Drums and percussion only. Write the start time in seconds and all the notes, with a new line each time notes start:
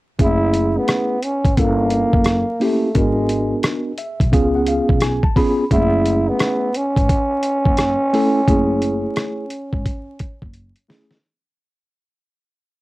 0.19 kick, closed hi-hat
0.54 closed hi-hat
0.88 cross-stick, closed hi-hat
1.22 closed hi-hat
1.44 kick, closed hi-hat
1.57 kick, closed hi-hat
1.90 closed hi-hat
2.13 kick
2.24 cross-stick, closed hi-hat
2.61 open hi-hat
2.95 kick, closed hi-hat
3.29 closed hi-hat
3.63 cross-stick, closed hi-hat
3.98 closed hi-hat
4.20 kick, closed hi-hat
4.33 kick, closed hi-hat
4.67 closed hi-hat
4.89 kick
5.01 cross-stick, closed hi-hat
5.23 kick
5.36 kick, open hi-hat
5.71 kick, closed hi-hat
6.06 closed hi-hat
6.39 cross-stick, closed hi-hat
6.74 closed hi-hat
6.96 kick, closed hi-hat
7.09 kick, closed hi-hat
7.43 closed hi-hat
7.66 kick
7.77 cross-stick, closed hi-hat
8.14 open hi-hat
8.48 kick, closed hi-hat
8.82 closed hi-hat
9.16 cross-stick, closed hi-hat
9.50 closed hi-hat
9.73 kick
9.86 kick, closed hi-hat
10.19 kick, closed hi-hat
10.42 kick
10.53 closed hi-hat
10.76 closed hi-hat
10.90 snare, open hi-hat
11.11 snare